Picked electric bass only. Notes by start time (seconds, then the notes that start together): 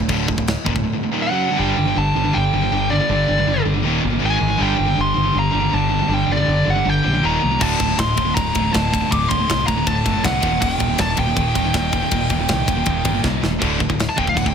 0.10 D1
0.28 D1
0.38 D1
0.66 D#1
0.76 D1
1.60 G1
1.77 G1
1.97 G1
2.16 G1
2.36 G1
2.53 G1
2.71 G1
3.10 G1
3.29 G1
3.47 F#1
3.65 G1
3.85 D#1
4.05 G1
4.23 G#1
4.41 G#1
4.60 G1
4.79 G1
4.98 G1
5.16 G1
5.35 G1
5.53 G1
5.73 G1
6.09 G1
6.28 G1
6.48 F#1
6.67 G1
6.86 G1
7.06 A#1
7.24 D#1
7.44 C2
7.61 D1
7.80 D1
7.99 D1
8.18 D1
8.37 D1
8.56 D1
8.75 D1
9.13 D1
9.31 D1
9.50 C2
9.69 D1
9.87 D1
10.06 F#1
10.25 C2
10.43 D#1
10.62 D#1
10.80 D#1
10.99 D#1
11.18 D#1
11.37 D#1
11.56 D#1
11.75 D#1
12.11 D#1
12.31 D#1
12.49 C2
12.68 D#1
12.87 D#1
13.05 G1
13.25 C2
13.43 D#1
13.62 D1
13.81 D1
13.90 D1
14.18 D#1
14.28 D1
14.37 D1
14.47 D1